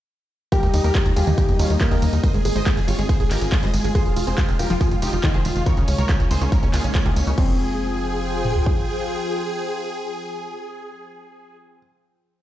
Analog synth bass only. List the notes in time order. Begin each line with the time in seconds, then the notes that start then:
0.63 D#2
0.74 D#2
0.84 D#2
1.06 D#2
1.16 D#2
1.27 D#2
1.49 F2
1.59 D#2
1.70 D#2
1.91 D#2
2.02 D#2
2.13 D#2
2.34 G#1
2.45 G#1
2.56 G#1
2.77 G#1
2.88 G#1
2.99 G#1
3.20 A#1
3.31 G#1
3.42 G#1
3.63 G#1
3.74 G#1
3.84 G#1
4.06 F1
4.17 F1
4.27 F1
4.49 F1
4.59 F1
4.70 F1
4.91 G1
5.02 F1
5.13 F1
5.34 F1
5.45 F1
5.56 F1
5.77 C#2
5.88 C#2
5.99 C#2
6.20 C#2
6.31 C#2
6.41 C#2
6.63 C#2
6.74 C#2
6.84 A#1
7.06 C#2
7.16 C#2
7.27 C#2
7.38 F1